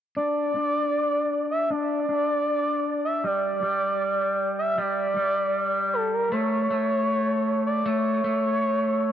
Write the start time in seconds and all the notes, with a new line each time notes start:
0.17 D4 D5
0.55 D4
1.51 E5
1.70 D4 D5
2.09 D4
3.05 E5
3.24 G3 D5
3.63 G3
4.59 E5
4.78 G3 D5
5.17 G3
5.93 A4
6.13 A#4
6.32 A3 C#5
6.70 A3
7.67 D5
7.86 A3 C#5
8.24 A3